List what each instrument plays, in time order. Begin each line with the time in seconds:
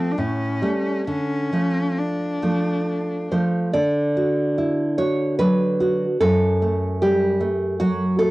Already playing: nylon-string guitar F3 A3, cello C4
0.12 cello D4
0.18 nylon-string guitar A2, cello C#4
0.62 nylon-string guitar G3 A3
1.07 nylon-string guitar D3, cello C#4
1.53 nylon-string guitar F3 A3
1.98 cello D4
2.42 nylon-string guitar F3 A3
3.32 nylon-string guitar F3 A3 C5
3.73 nylon-string guitar D3 D5
4.17 nylon-string guitar F#4
4.58 nylon-string guitar E4
4.98 nylon-string guitar F#4 C#5
5.39 nylon-string guitar F#3 B4
5.80 nylon-string guitar F#4
6.20 nylon-string guitar F#2 A4
6.62 nylon-string guitar A3
7.02 nylon-string guitar G3 G4
7.41 nylon-string guitar A3
7.80 nylon-string guitar F#3 F#4
8.19 nylon-string guitar A3 A4